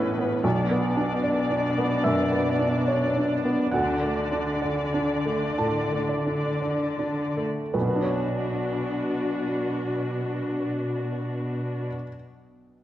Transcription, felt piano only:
0.00 0.41 A1 soft
0.00 0.18 B3 soft
0.00 0.47 E4 soft
0.00 0.47 C#5 soft
0.00 0.48 E5 soft
0.00 0.48 A5 medium
0.18 0.44 B3 soft
0.44 2.00 B1 soft
0.71 1.13 B3 soft
0.97 1.40 D4 soft
1.24 1.66 D5 soft
1.51 1.94 D4 soft
1.78 2.21 B3 soft
2.04 2.48 F#2 soft
2.04 3.68 E5 medium
2.32 2.76 B3 soft
2.59 3.04 D4 soft
2.88 3.33 C#5 soft
3.16 3.62 D4 soft
3.45 3.73 B3 soft
3.72 5.54 D2 soft
3.72 5.53 F#5 medium
4.03 4.50 A3 soft
4.32 4.81 D4 soft
4.62 5.12 D5 soft
4.94 5.45 D4 soft
5.25 5.78 A3 soft
5.58 6.12 A2 soft
5.58 6.05 A5 soft
5.92 6.47 A3 soft
6.09 6.60 D5 soft
6.26 6.84 D4 soft
6.62 7.22 D5 soft
6.99 7.60 D4 soft
7.37 7.74 A3 soft
7.74 11.87 B1 soft
7.74 11.86 B4 soft
7.81 11.94 B2 soft
7.88 12.01 B3 soft
7.95 12.08 D4 soft
8.02 12.15 C#5 soft

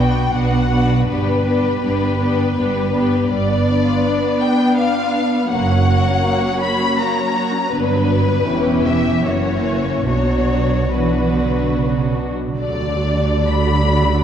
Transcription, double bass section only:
0.00 0.24 B1 soft
0.34 1.01 B1 soft
1.10 1.76 G1 soft
1.84 2.48 G1 soft
2.57 3.21 G1 soft
3.30 3.91 G1 soft
5.52 6.13 F#1 soft
7.72 8.43 G1 soft
8.47 9.26 E1 soft
9.26 10.07 F#1 soft
10.08 12.34 B1 soft
12.60 14.24 D2 soft

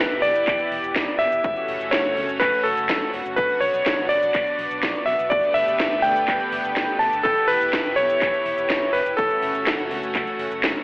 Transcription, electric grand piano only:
0.00 0.24 B4 loud
0.22 1.22 D5 loud
1.19 1.94 E5 loud
1.91 2.42 C#5 loud
2.40 2.65 B4 loud
2.64 3.09 A4 medium
3.36 3.62 B4 medium
3.61 4.11 C#5 medium
4.09 5.02 D5 loud
5.06 5.31 E5 loud
5.30 5.53 D5 loud
5.54 6.05 E5 loud
6.02 6.96 G5 loud
6.99 7.25 A5 loud
7.23 7.49 A4 loud
7.48 7.98 B4 loud
7.96 8.96 C#5 loud
8.93 9.16 B4 medium
9.17 10.59 A4 medium

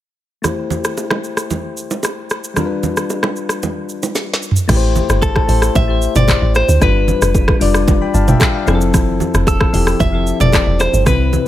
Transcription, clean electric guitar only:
5.23 5.76 A4 medium
5.76 6.16 E5 loud
6.16 6.53 D5 loud
6.56 6.82 C5 medium
6.83 7.58 B4 medium
9.48 10.02 A4 medium
10.00 10.41 E5 loud
10.41 10.81 D5 loud
10.80 11.06 C5 loud
11.07 11.48 B4 medium

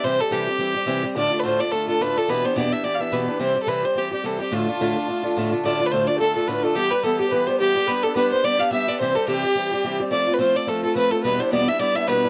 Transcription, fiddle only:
0.04 0.22 C5 loud
0.20 0.34 A4 medium
0.33 1.04 G4 medium
1.16 1.41 D5 loud
1.39 1.44 B4 medium
1.45 1.61 C5 medium
1.60 1.73 D5 medium
1.72 1.88 A4 medium
1.89 2.03 A4 medium
2.01 2.19 B4 medium
2.17 2.31 A4 medium
2.29 2.46 B4 medium
2.45 2.57 C5 medium
2.57 2.74 D5 medium
2.72 2.86 E5 medium
2.84 2.96 D5 medium
2.94 3.02 F5 medium
3.00 3.14 E5 medium
3.12 3.40 B4 medium
3.41 3.61 C5 medium
3.63 3.70 A4 medium
3.68 3.86 B4 medium
3.85 4.00 C5 medium
3.98 4.12 G4 medium
4.12 4.26 G4 medium
4.25 4.40 A4 medium
4.41 4.54 G4 medium
4.53 5.52 F4 medium
5.64 5.87 D5 medium
5.86 5.93 B4 medium
5.91 6.08 C5 medium
6.07 6.19 D5 medium
6.20 6.34 A4 loud
6.35 6.49 A4 medium
6.48 6.58 B4 medium
6.58 6.64 B4 medium
6.62 6.76 A4 medium
6.75 6.92 G4 loud
6.90 7.05 B4 medium
7.03 7.19 A4 medium
7.19 7.33 G4 medium
7.31 7.48 B4 medium
7.47 7.59 C5 medium
7.60 7.90 G4 medium
7.88 8.04 B4 loud
8.03 8.15 A4 medium
8.16 8.30 B4 medium
8.32 8.46 C5 medium
8.44 8.61 D5 loud
8.59 8.71 F5 medium
8.72 8.90 E5 medium
8.88 8.99 D5 medium
9.00 9.16 C5 medium
9.15 9.27 A4 medium
9.27 9.95 G4 medium
10.11 10.35 D5 medium
10.33 10.40 B4 medium
10.40 10.58 C5 medium
10.56 10.70 D5 medium
10.68 10.83 A4 medium
10.84 10.95 A4 medium
10.96 11.12 B4 medium
11.11 11.23 A4 medium
11.23 11.41 B4 medium
11.39 11.52 C5 medium
11.52 11.70 D5 medium
11.68 11.81 E5 medium
11.80 11.97 D5 medium
11.96 12.09 E5 medium
12.08 12.29 B4 medium

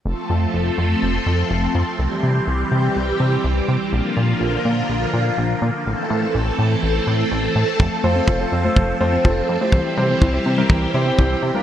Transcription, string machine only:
0.05 1.97 F3 medium
0.05 1.97 A3 medium
0.05 3.89 C4 medium
0.05 1.97 A4 medium
1.99 3.91 E3 medium
1.99 3.91 G3 medium
1.99 3.91 G4 medium
3.92 5.84 D3 medium
3.92 5.84 F3 medium
3.92 5.84 A#3 medium
3.92 5.84 F4 medium
5.86 7.78 E3 medium
5.86 9.69 A3 medium
5.86 11.63 C4 medium
5.86 9.69 A4 medium
7.80 9.71 F3 medium
9.73 11.63 E3 medium
9.73 11.63 G3 medium
9.73 11.63 G4 medium

